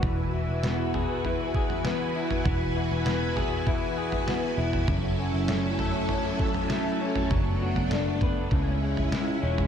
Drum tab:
SD |----o-------o---|----o-------o---|----o-------o---|----o-------o---|
FT |o-----o-o--o---o|o-----o-o--o---o|o-----o-o--o---o|o--o--o-o--o---o|
BD |o---------o-----|o-------o-------|o---------o-----|o-----o-o-------|